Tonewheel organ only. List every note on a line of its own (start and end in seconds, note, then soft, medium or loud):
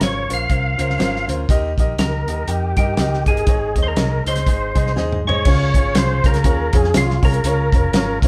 0.03 0.31 C#5 medium
0.33 1.26 F5 loud
1.99 2.50 A#4 medium
2.48 2.76 G4 medium
2.77 3.23 G4 medium
3.28 3.77 G#4 loud
3.83 3.87 C5 medium
3.88 4.24 A#4 medium
4.27 4.93 C5 medium
5.27 5.98 C#5 loud
5.97 6.26 C5 loud
6.26 6.76 A#4 loud
6.74 6.95 G#4 loud
6.98 7.23 F4 medium
7.25 8.19 A#4 loud